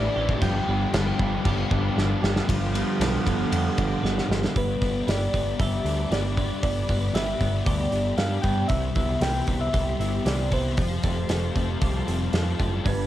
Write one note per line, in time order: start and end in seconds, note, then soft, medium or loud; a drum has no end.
0.00 0.13 A2 medium
0.00 0.39 A2 medium
0.00 0.14 E3 medium
0.00 0.16 E3 medium
0.00 0.40 E3 medium
0.00 0.15 G3 medium
0.00 0.42 G3 loud
0.00 0.40 A3 medium
0.00 0.42 A3 medium
0.00 0.15 C#4 medium
0.00 0.42 D4 loud
0.00 1.96 D4 medium
0.00 0.16 E4 loud
0.00 0.40 E4 loud
0.00 0.15 G4 medium
0.00 2.44 G4 medium
0.00 0.38 C5 medium
0.00 0.44 D5 loud
0.00 0.38 A5 medium
0.00 2.44 D6 medium
0.15 0.33 A1 medium
0.15 0.39 A2 medium
0.15 0.40 E3 medium
0.15 0.41 G3 medium
0.15 0.40 C#4 medium
0.15 0.41 E4 loud
0.15 0.45 G4 medium
0.29 kick medium
0.40 0.59 G1 medium
0.40 2.46 G2 loud
0.40 0.91 G2 medium
0.40 0.65 G2 loud
0.40 0.65 D3 loud
0.40 0.68 D3 medium
0.40 0.92 F3 medium
0.40 0.66 F3 medium
0.40 2.47 F3 loud
0.40 0.65 G3 loud
0.40 0.66 B3 loud
0.40 2.47 B3 loud
0.40 0.67 D4 loud
0.40 2.47 F4 loud
0.40 2.47 F5 medium
0.40 2.23 G5 loud
0.40 2.46 B5 medium
0.40 kick medium
0.40 crash medium
0.66 0.85 G1 medium
0.66 0.90 G2 medium
0.66 0.91 D3 medium
0.66 0.93 D3 medium
0.66 0.92 F3 medium
0.66 0.94 G3 medium
0.66 0.92 B3 medium
0.66 1.18 B3 medium
0.66 0.92 D4 medium
0.92 1.10 G1 medium
0.92 1.17 G2 medium
0.92 1.43 G2 medium
0.92 1.18 D3 medium
0.92 1.45 D3 medium
0.92 1.18 F3 loud
0.92 2.23 F3 medium
0.92 1.46 G3 medium
0.92 1.18 B3 medium
0.92 1.19 D4 loud
0.92 snare loud
0.92 crash medium
1.19 1.36 G1 medium
1.19 1.42 G2 medium
1.19 1.43 D3 medium
1.19 1.44 F3 medium
1.19 1.70 B3 medium
1.19 1.44 B3 medium
1.19 1.44 D4 medium
1.19 kick medium
1.43 1.63 G1 loud
1.43 1.68 G2 medium
1.43 1.95 G2 loud
1.43 1.69 D3 loud
1.43 1.97 D3 loud
1.43 1.70 F3 loud
1.43 1.98 G3 loud
1.43 1.70 B3 medium
1.43 1.70 D4 medium
1.43 2.22 G4 medium
1.43 kick loud
1.43 crash medium
1.70 1.88 G1 medium
1.70 1.95 G2 medium
1.70 1.95 D3 medium
1.70 1.96 F3 medium
1.70 2.48 B3 medium
1.70 1.96 B3 medium
1.70 1.97 D4 medium
1.70 kick medium
1.96 2.14 G1 medium
1.96 2.46 G2 medium
1.96 2.22 G2 medium
1.96 2.22 D3 medium
1.96 2.47 D3 medium
1.96 2.23 F3 medium
1.96 2.48 G3 medium
1.96 2.22 B3 medium
1.96 2.48 D4 medium
1.96 2.23 D4 loud
1.96 snare medium
2.22 2.40 G1 medium
2.22 2.47 G2 medium
2.22 2.47 D3 medium
2.22 2.47 F3 medium
2.22 2.47 B3 loud
2.22 2.48 D4 medium
2.22 2.49 G4 medium
2.22 snare medium
2.36 snare medium
2.47 2.82 G1 medium
2.47 4.55 G2 medium
2.47 2.98 G2 medium
2.47 4.55 D3 medium
2.47 2.75 D3 loud
2.47 4.55 F3 medium
2.47 3.78 F3 medium
2.47 4.56 B3 medium
2.47 4.56 F4 medium
2.47 4.54 G4 medium
2.47 4.54 F5 medium
2.47 4.54 B5 medium
2.47 4.54 D6 medium
2.47 kick loud
2.47 ride medium
2.51 2.72 G3 loud
2.74 2.99 D3 medium
2.74 3.01 G3 medium
2.74 3.25 B3 medium
2.74 ride medium
2.99 3.16 B1 medium
2.99 3.50 G2 medium
2.99 3.27 D3 medium
2.99 3.24 G3 medium
2.99 3.77 D4 medium
2.99 snare loud
2.99 ride loud
3.26 3.43 G1 medium
3.26 3.52 D3 medium
3.26 3.53 G3 medium
3.26 4.02 B3 medium
3.26 kick medium
3.26 ride medium
3.51 3.68 F2 medium
3.51 4.02 G2 loud
3.51 3.79 D3 loud
3.51 3.76 G3 loud
3.51 4.55 G4 medium
3.51 ride medium
3.77 3.94 G1 medium
3.77 4.04 D3 medium
3.77 4.04 G3 medium
3.77 4.56 D4 medium
3.77 kick medium
3.77 ride medium
4.03 4.20 G1 medium
4.03 4.53 G2 medium
4.03 4.31 D3 medium
4.03 4.28 G3 medium
4.03 4.54 B3 medium
4.03 snare medium
4.18 snare medium
4.29 4.46 G1 medium
4.29 4.55 D3 medium
4.29 4.55 F3 medium
4.29 4.54 G3 medium
4.29 snare medium
4.44 snare medium
4.55 4.75 G1 medium
4.55 5.85 G2 medium
4.55 4.81 B3 medium
4.55 13.07 G4 medium
4.55 5.12 B4 medium
4.55 8.67 D5 medium
4.55 10.74 B5 medium
4.55 8.66 D6 medium
4.55 kick loud
4.55 open hi-hat medium
4.81 5.01 G1 medium
4.81 5.33 B3 medium
4.81 5.07 B3 medium
4.81 kick medium
4.81 open hi-hat soft
5.07 5.27 G1 medium
5.07 5.33 B3 medium
5.07 6.10 G4 medium
5.07 5.62 D5 medium
5.07 snare loud
5.07 open hi-hat medium
5.33 5.53 G1 medium
5.33 5.86 B3 medium
5.33 6.11 B3 medium
5.33 kick medium
5.33 open hi-hat soft
5.59 5.79 G1 medium
5.59 7.66 G3 medium
5.59 7.67 G4 medium
5.59 6.14 E5 loud
5.59 kick loud
5.59 open hi-hat medium
5.84 6.04 D2 medium
5.84 6.88 B3 medium
5.84 7.15 D4 medium
5.84 open hi-hat soft
6.11 6.49 G1 medium
6.11 6.37 B3 medium
6.11 7.14 G4 medium
6.11 6.62 D5 medium
6.11 snare medium
6.11 open hi-hat medium
6.37 6.62 B3 medium
6.37 7.67 D4 medium
6.37 kick medium
6.37 open hi-hat soft
6.63 6.82 G1 medium
6.63 7.93 G2 medium
6.63 6.88 B3 medium
6.63 7.16 D5 loud
6.63 kick loud
6.63 open hi-hat medium
6.88 7.08 G1 medium
6.88 7.39 B3 medium
6.88 7.14 B3 medium
6.88 kick medium
6.88 open hi-hat soft
7.13 7.33 G1 medium
7.13 7.40 B3 medium
7.13 8.17 G4 medium
7.13 7.65 E5 loud
7.13 snare loud
7.13 open hi-hat medium
7.40 7.60 G1 medium
7.40 7.90 B3 medium
7.40 8.17 B3 medium
7.40 kick medium
7.40 open hi-hat soft
7.66 7.86 D2 medium
7.66 9.74 G3 medium
7.66 9.73 G4 medium
7.66 8.15 D5 medium
7.66 kick loud
7.66 open hi-hat medium
7.91 8.11 G1 medium
7.91 8.70 B3 medium
7.91 8.71 D4 medium
7.91 open hi-hat soft
8.17 8.37 G2 medium
8.17 8.43 B3 medium
8.17 9.21 G4 medium
8.17 8.43 F5 loud
8.17 snare medium
8.17 open hi-hat medium
8.42 8.63 G2 medium
8.42 8.71 B3 medium
8.42 8.70 D4 medium
8.42 8.69 G5 loud
8.42 kick medium
8.42 open hi-hat soft
8.68 8.89 C2 medium
8.68 10.00 C3 medium
8.68 9.21 E3 medium
8.68 8.95 E5 loud
8.68 10.76 E5 medium
8.68 10.76 C6 medium
8.68 kick loud
8.68 open hi-hat medium
8.95 9.15 C2 medium
8.95 9.47 B3 medium
8.95 9.23 E5 medium
8.95 kick medium
8.95 open hi-hat soft
9.21 9.41 C2 medium
9.21 10.24 E3 medium
9.21 10.25 G4 medium
9.21 9.60 G5 loud
9.21 snare loud
9.21 open hi-hat medium
9.47 9.67 C2 medium
9.47 10.50 B3 medium
9.47 9.98 B3 medium
9.47 kick medium
9.47 open hi-hat soft
9.61 9.97 E5 medium
9.73 9.93 C2 medium
9.73 10.81 G3 medium
9.73 10.81 G4 medium
9.73 kick medium
9.73 open hi-hat medium
9.99 10.19 G1 medium
9.99 10.78 B3 medium
9.99 10.78 E4 medium
9.99 10.27 E5 medium
9.99 open hi-hat soft
10.25 10.79 C2 medium
10.25 10.78 E3 medium
10.25 10.81 G4 medium
10.25 10.55 D5 medium
10.25 snare medium
10.25 open hi-hat medium
10.51 10.78 B3 medium
10.51 10.78 E4 medium
10.51 12.61 C5 medium
10.51 kick medium
10.51 open hi-hat soft
10.76 10.97 F1 medium
10.76 12.08 F3 medium
10.76 11.29 F3 medium
10.76 12.83 F5 medium
10.76 12.83 A5 medium
10.76 12.83 C6 medium
10.76 kick loud
10.76 open hi-hat medium
11.03 11.23 F1 medium
11.03 11.54 A3 medium
11.03 11.55 C4 medium
11.03 kick medium
11.03 open hi-hat medium
11.29 11.49 F1 medium
11.29 12.32 F3 medium
11.29 12.33 A4 medium
11.29 snare loud
11.29 open hi-hat medium
11.55 11.75 F1 medium
11.55 12.58 A3 medium
11.55 12.06 C4 medium
11.55 kick medium
11.55 open hi-hat soft
11.81 12.01 C2 medium
11.81 13.07 G3 medium
11.81 13.07 G4 medium
11.81 kick loud
11.81 open hi-hat medium
12.07 12.27 F1 medium
12.07 12.86 C4 medium
12.07 open hi-hat soft
12.33 12.53 F2 medium
12.33 12.85 F3 medium
12.33 12.86 A4 medium
12.33 snare medium
12.33 open hi-hat medium
12.59 12.79 F#1 medium
12.59 12.84 A3 medium
12.59 12.86 F4 medium
12.59 kick medium
12.59 open hi-hat soft
12.84 13.05 G1 medium
12.84 13.07 G2 medium
12.84 13.07 B3 medium
12.84 13.07 D5 medium
12.84 13.07 B5 medium
12.84 13.07 D6 medium
12.84 kick loud
12.84 open hi-hat medium
12.88 13.07 B4 medium